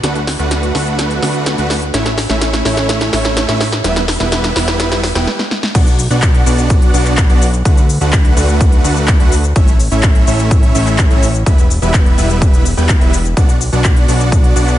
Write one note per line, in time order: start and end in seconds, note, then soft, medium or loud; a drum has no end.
0.03 0.37 D2 medium
0.03 0.18 A3 medium
0.03 0.18 D4 medium
0.03 0.18 F#4 medium
0.03 0.18 B4 medium
0.03 0.18 F#5 loud
0.03 snare medium
0.03 closed hi-hat medium
0.15 closed hi-hat soft
0.27 snare medium
0.27 open hi-hat medium
0.39 0.72 D2 loud
0.39 0.72 A3 medium
0.39 0.72 D4 medium
0.39 0.72 F#4 medium
0.39 0.72 B4 medium
0.39 0.72 F#5 medium
0.39 closed hi-hat soft
0.51 snare medium
0.51 closed hi-hat medium
0.63 closed hi-hat soft
0.75 1.20 D2 loud
0.75 1.20 A3 medium
0.75 1.20 D4 medium
0.75 1.20 F#4 medium
0.75 1.20 B4 medium
0.75 1.20 F#5 medium
0.75 snare medium
0.75 open hi-hat medium
0.87 closed hi-hat soft
0.99 snare medium
0.99 closed hi-hat medium
1.11 closed hi-hat soft
1.22 1.56 D2 medium
1.22 1.55 A3 medium
1.22 1.55 D4 medium
1.22 1.55 F#4 medium
1.22 1.55 B4 medium
1.22 1.55 F#5 loud
1.22 snare medium
1.22 open hi-hat loud
1.34 closed hi-hat soft
1.46 snare medium
1.46 closed hi-hat loud
1.58 1.92 D2 loud
1.58 1.73 A3 medium
1.58 1.73 D4 medium
1.58 1.73 F#4 medium
1.58 1.73 B4 medium
1.58 1.73 F#5 loud
1.58 closed hi-hat soft
1.70 snare medium
1.70 open hi-hat loud
1.82 closed hi-hat soft
1.94 2.27 A1 loud
1.94 2.09 A3 medium
1.94 2.09 C#4 medium
1.94 2.09 E4 medium
1.94 2.09 C#5 medium
1.94 2.09 E5 loud
1.94 snare medium
1.94 closed hi-hat loud
2.06 snare medium
2.06 closed hi-hat soft
2.18 snare medium
2.18 open hi-hat medium
2.29 2.63 A1 loud
2.29 2.63 A3 medium
2.29 2.63 C#4 medium
2.29 2.63 E4 medium
2.29 2.63 C#5 medium
2.29 2.63 E5 medium
2.29 snare medium
2.29 closed hi-hat soft
2.41 snare loud
2.41 closed hi-hat medium
2.53 snare medium
2.53 closed hi-hat soft
2.65 3.10 A1 loud
2.65 3.10 A3 medium
2.65 3.10 C#4 medium
2.65 3.10 E4 medium
2.65 3.10 C#5 medium
2.65 3.10 E5 loud
2.65 snare medium
2.65 open hi-hat medium
2.77 snare medium
2.77 closed hi-hat soft
2.89 snare loud
2.89 closed hi-hat medium
3.01 snare medium
3.01 closed hi-hat soft
3.13 3.46 A1 medium
3.13 3.46 A3 medium
3.13 3.46 C#4 medium
3.13 3.46 E4 medium
3.13 3.46 C#5 medium
3.13 3.46 E5 loud
3.13 snare medium
3.13 open hi-hat loud
3.25 snare medium
3.25 closed hi-hat soft
3.37 snare loud
3.37 closed hi-hat medium
3.49 3.82 A1 loud
3.49 3.64 A3 medium
3.49 3.64 C#4 medium
3.49 3.64 E4 medium
3.49 3.64 C#5 medium
3.49 3.64 E5 loud
3.49 snare medium
3.49 closed hi-hat soft
3.61 snare loud
3.61 open hi-hat medium
3.72 snare medium
3.72 closed hi-hat soft
3.84 4.18 E1 medium
3.84 3.99 G3 medium
3.84 3.99 B3 medium
3.84 3.99 E4 medium
3.84 3.99 B4 medium
3.84 3.99 E5 medium
3.84 snare loud
3.84 closed hi-hat loud
3.96 snare medium
3.96 closed hi-hat soft
4.08 snare loud
4.08 open hi-hat loud
4.20 4.53 E1 loud
4.20 4.53 G3 medium
4.20 4.53 B3 medium
4.20 4.53 E4 medium
4.20 4.53 B4 medium
4.20 4.53 E5 medium
4.20 snare medium
4.20 closed hi-hat soft
4.32 snare loud
4.32 closed hi-hat loud
4.44 snare medium
4.44 closed hi-hat soft
4.56 5.13 E1 loud
4.56 5.01 G3 medium
4.56 5.01 B3 medium
4.56 5.01 E4 medium
4.56 5.01 B4 medium
4.56 5.01 E5 medium
4.56 snare loud
4.56 open hi-hat loud
4.68 snare loud
4.68 closed hi-hat soft
4.80 snare loud
4.80 closed hi-hat loud
4.92 snare medium
4.92 closed hi-hat soft
5.03 snare loud
5.03 open hi-hat loud
5.15 5.27 E1 loud
5.15 5.27 G3 medium
5.15 5.27 B3 medium
5.15 5.27 E4 medium
5.15 5.27 B4 medium
5.15 5.27 G5 medium
5.15 snare loud
5.15 closed hi-hat soft
5.27 snare medium
5.39 snare medium
5.51 snare medium
5.63 snare medium
5.75 6.08 B1 loud
5.75 5.90 B3 medium
5.75 5.90 D4 medium
5.75 5.90 F#4 medium
5.75 5.90 D5 medium
5.75 5.90 F#5 loud
5.75 kick loud
5.75 closed hi-hat loud
5.75 crash loud
5.75 cabasa soft
5.87 closed hi-hat soft
5.87 cabasa soft
5.99 open hi-hat loud
5.99 cabasa medium
6.10 6.44 B1 medium
6.10 6.43 B3 medium
6.10 6.43 D4 medium
6.10 6.43 F#4 medium
6.10 6.43 D5 medium
6.10 6.43 F#5 medium
6.10 closed hi-hat soft
6.10 cabasa soft
6.22 kick loud
6.22 clap loud
6.22 closed hi-hat loud
6.22 cabasa soft
6.35 closed hi-hat soft
6.46 6.92 B1 loud
6.46 6.91 B3 medium
6.46 6.91 D4 medium
6.46 6.91 F#4 medium
6.46 6.91 D5 medium
6.46 6.91 F#5 medium
6.46 open hi-hat loud
6.46 cabasa medium
6.58 closed hi-hat soft
6.58 cabasa soft
6.70 kick loud
6.70 closed hi-hat loud
6.70 cabasa soft
6.82 closed hi-hat soft
6.94 7.27 B1 loud
6.94 7.27 B3 medium
6.94 7.27 D4 medium
6.94 7.27 F#4 medium
6.94 7.27 D5 medium
6.94 7.27 F#5 loud
6.94 open hi-hat loud
6.94 cabasa medium
7.06 clap soft
7.06 closed hi-hat soft
7.06 cabasa soft
7.17 kick loud
7.17 clap loud
7.17 closed hi-hat medium
7.17 cabasa soft
7.30 7.63 B1 loud
7.30 7.45 B3 medium
7.30 7.45 D4 medium
7.30 7.45 F#4 medium
7.30 7.45 D5 medium
7.30 7.45 F#5 loud
7.30 closed hi-hat soft
7.42 open hi-hat loud
7.42 cabasa medium
7.53 closed hi-hat soft
7.53 cabasa soft
7.65 7.99 D2 medium
7.65 7.80 A3 medium
7.65 7.80 D4 medium
7.65 7.80 F#4 medium
7.65 7.80 B4 medium
7.65 7.80 F#5 medium
7.65 kick loud
7.65 closed hi-hat medium
7.65 cabasa soft
7.77 closed hi-hat soft
7.77 cabasa soft
7.89 open hi-hat loud
7.89 cabasa medium
8.01 8.34 D2 loud
8.01 8.34 A3 medium
8.01 8.34 D4 medium
8.01 8.34 F#4 medium
8.01 8.34 B4 medium
8.01 8.34 F#5 medium
8.01 closed hi-hat soft
8.01 cabasa soft
8.13 kick loud
8.13 clap loud
8.13 closed hi-hat medium
8.13 cabasa soft
8.25 closed hi-hat soft
8.37 8.82 D2 loud
8.37 8.81 A3 medium
8.37 8.81 D4 medium
8.37 8.81 F#4 medium
8.37 8.81 B4 medium
8.37 8.82 F#5 medium
8.37 open hi-hat loud
8.37 cabasa medium
8.49 closed hi-hat soft
8.49 cabasa soft
8.61 kick loud
8.61 closed hi-hat medium
8.61 cabasa soft
8.72 closed hi-hat soft
8.84 9.18 D2 loud
8.84 9.17 A3 medium
8.84 9.17 D4 medium
8.84 9.17 F#4 medium
8.84 9.17 B4 medium
8.84 9.17 F#5 loud
8.84 open hi-hat loud
8.84 cabasa medium
8.96 closed hi-hat soft
8.96 cabasa soft
9.08 kick loud
9.08 clap loud
9.08 closed hi-hat medium
9.08 cabasa soft
9.20 9.53 D2 loud
9.20 9.35 A3 medium
9.20 9.35 D4 medium
9.20 9.35 F#4 medium
9.20 9.35 B4 medium
9.20 9.35 F#5 loud
9.20 closed hi-hat soft
9.32 open hi-hat loud
9.32 cabasa medium
9.44 closed hi-hat soft
9.44 cabasa soft
9.56 9.89 A1 loud
9.56 9.71 A3 medium
9.56 9.71 C#4 medium
9.56 9.71 E4 medium
9.56 9.71 C#5 medium
9.56 9.71 E5 loud
9.56 kick loud
9.56 closed hi-hat medium
9.56 cabasa soft
9.68 closed hi-hat soft
9.68 cabasa soft
9.80 open hi-hat loud
9.80 cabasa medium
9.91 10.25 A1 medium
9.91 10.24 A3 medium
9.91 10.24 C#4 medium
9.91 10.24 E4 medium
9.91 10.24 C#5 medium
9.91 10.24 E5 loud
9.91 closed hi-hat soft
9.91 cabasa soft
10.03 kick loud
10.03 clap loud
10.03 closed hi-hat medium
10.03 cabasa soft
10.15 closed hi-hat soft
10.27 10.72 A1 loud
10.27 10.72 A3 medium
10.27 10.72 C#4 medium
10.27 10.72 E4 medium
10.27 10.72 C#5 medium
10.27 10.72 E5 loud
10.27 open hi-hat loud
10.27 cabasa medium
10.39 closed hi-hat soft
10.39 cabasa soft
10.51 kick loud
10.51 closed hi-hat medium
10.51 cabasa soft
10.63 closed hi-hat soft
10.75 11.08 A1 loud
10.75 11.08 A3 medium
10.75 11.08 C#4 medium
10.75 11.08 E4 medium
10.75 11.08 C#5 medium
10.75 11.08 E5 loud
10.75 open hi-hat loud
10.75 cabasa medium
10.87 clap soft
10.87 closed hi-hat soft
10.87 cabasa soft
10.98 kick loud
10.98 clap loud
10.98 closed hi-hat medium
10.98 cabasa soft
11.11 11.44 A1 loud
11.11 11.26 A3 medium
11.11 11.26 C#4 medium
11.11 11.26 E4 medium
11.11 11.26 C#5 medium
11.11 11.26 E5 loud
11.11 closed hi-hat soft
11.23 open hi-hat loud
11.23 cabasa medium
11.35 closed hi-hat soft
11.35 cabasa soft
11.46 11.80 E1 loud
11.46 11.61 G3 medium
11.46 11.61 B3 medium
11.46 11.61 E4 medium
11.46 11.61 B4 medium
11.46 11.61 E5 loud
11.46 kick loud
11.46 closed hi-hat medium
11.46 cabasa soft
11.58 closed hi-hat soft
11.58 cabasa soft
11.70 open hi-hat loud
11.70 cabasa medium
11.82 12.15 E1 medium
11.82 12.15 G3 medium
11.82 12.15 B3 medium
11.82 12.15 E4 medium
11.82 12.15 B4 medium
11.82 12.15 E5 medium
11.82 closed hi-hat soft
11.82 cabasa soft
11.94 kick loud
11.94 clap loud
11.94 closed hi-hat medium
11.94 cabasa soft
12.06 closed hi-hat soft
12.18 12.75 E1 loud
12.18 12.63 G3 medium
12.18 12.63 B3 medium
12.18 12.63 E4 medium
12.18 12.63 B4 medium
12.18 12.63 E5 medium
12.18 open hi-hat loud
12.18 cabasa medium
12.30 closed hi-hat soft
12.30 cabasa soft
12.42 kick loud
12.42 closed hi-hat medium
12.42 cabasa soft
12.54 closed hi-hat soft
12.54 cabasa soft
12.65 open hi-hat loud
12.65 cabasa medium
12.77 12.99 E1 medium
12.77 12.98 G3 medium
12.77 12.98 B3 medium
12.77 12.98 E4 medium
12.77 12.98 B4 medium
12.77 12.98 G5 medium
12.77 closed hi-hat soft
12.77 cabasa soft
12.89 kick loud
12.89 clap loud
12.89 closed hi-hat medium
12.89 cabasa soft
13.01 13.34 E1 loud
13.01 13.16 G3 medium
13.01 13.16 B3 medium
13.01 13.16 E4 medium
13.01 13.16 B4 medium
13.01 13.16 E5 medium
13.01 closed hi-hat soft
13.13 open hi-hat loud
13.13 cabasa medium
13.25 closed hi-hat soft
13.25 cabasa soft
13.37 13.70 B1 loud
13.37 13.52 B3 medium
13.37 13.52 D4 medium
13.37 13.52 F#4 medium
13.37 13.52 D5 medium
13.37 13.52 F#5 medium
13.37 kick loud
13.37 closed hi-hat medium
13.37 cabasa soft
13.49 closed hi-hat soft
13.49 cabasa soft
13.61 open hi-hat loud
13.61 cabasa medium
13.73 14.06 B1 medium
13.73 14.05 B3 medium
13.73 14.05 D4 medium
13.73 14.05 F#4 medium
13.73 14.05 D5 medium
13.73 14.05 F#5 medium
13.73 closed hi-hat soft
13.73 cabasa soft
13.84 kick loud
13.84 clap loud
13.84 closed hi-hat medium
13.84 cabasa soft
13.96 closed hi-hat soft
14.08 14.53 B1 loud
14.08 14.53 B3 medium
14.08 14.53 D4 medium
14.08 14.53 F#4 medium
14.08 14.53 D5 medium
14.08 14.53 F#5 medium
14.08 open hi-hat loud
14.08 cabasa medium
14.20 closed hi-hat soft
14.20 cabasa soft
14.32 kick loud
14.32 closed hi-hat medium
14.32 cabasa soft
14.44 closed hi-hat soft
14.56 14.78 B1 loud
14.56 14.78 B3 medium
14.56 14.78 D4 medium
14.56 14.78 F#4 medium
14.56 14.78 D5 medium
14.56 14.78 F#5 loud
14.56 open hi-hat loud
14.56 cabasa medium
14.68 clap soft
14.68 closed hi-hat soft
14.68 cabasa soft